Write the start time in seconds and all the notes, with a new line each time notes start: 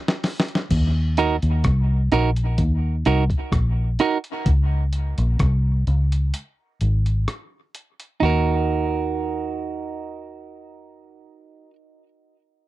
0.08 snare
0.24 snare, open hi-hat
0.40 snare
0.48 closed hi-hat
0.55 snare
0.71 D#2, kick, closed hi-hat, crash
1.17 D#4 F#4 A#4, closed hi-hat
1.42 D#2, closed hi-hat
1.64 C2, kick, cross-stick, closed hi-hat
2.12 A#1 D#4 F#4 A#4, closed hi-hat
2.36 closed hi-hat
2.58 D#2, kick, closed hi-hat
3.05 C2 D#4 F#4 A#4, closed hi-hat
3.30 kick, closed hi-hat
3.52 A#1, kick, cross-stick, closed hi-hat
3.99 D#4 F#4 A#4, closed hi-hat
4.24 closed hi-hat
4.46 C#2, kick, closed hi-hat
4.93 closed hi-hat
5.18 A#1, closed hi-hat
5.39 C2, kick, cross-stick, closed hi-hat
5.87 C#2, closed hi-hat
6.12 closed hi-hat
6.34 closed hi-hat
6.81 G#1, closed hi-hat
7.06 closed hi-hat
7.28 cross-stick, closed hi-hat
7.75 closed hi-hat
8.00 closed hi-hat
8.20 D#2 D#4 F#4
8.25 A#4